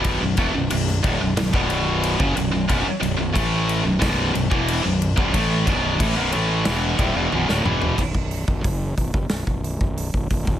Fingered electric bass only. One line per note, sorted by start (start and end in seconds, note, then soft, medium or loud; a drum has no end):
0.00 0.19 B0 medium
0.22 0.37 B0 medium
0.38 0.53 E1 medium
0.55 0.70 B0 medium
0.72 1.02 B0 medium
1.04 1.19 D1 medium
1.20 1.36 B0 medium
1.37 1.52 B0 medium
1.54 2.16 B0 medium
2.20 2.36 F#1 medium
2.37 2.52 B0 medium
2.53 2.69 B0 medium
2.70 2.85 B0 medium
2.87 muted fingered electric bass stroke soft
3.02 3.17 B0 medium
3.18 3.34 B0 medium
3.36 3.82 A1 loud
3.85 4.01 B0 medium
4.02 4.33 B0 loud
4.36 4.51 B0 medium
4.51 4.82 E1 medium
4.85 5.16 B0 medium
5.17 5.33 B0 medium
5.34 5.65 A1 medium
5.67 5.98 B0 medium
6.00 6.16 A1 loud
6.18 6.33 B0 medium
6.34 6.65 A1 medium
6.67 6.98 E1 medium
6.99 7.15 D1 medium
7.16 7.31 E1 medium
7.32 7.48 B0 medium
7.50 7.64 D1 medium
7.65 7.96 E1 medium
7.98 8.14 B0 medium
8.15 8.46 B0 medium
8.48 8.64 B0 medium
8.64 8.96 F#1 medium
8.98 9.14 B0 medium
9.14 9.29 F1 medium
9.30 9.46 B0 medium
9.48 9.79 B0 medium
9.81 10.12 B0 medium
10.14 10.30 B0 medium
10.31 10.46 B0 medium
10.47 10.59 D1 medium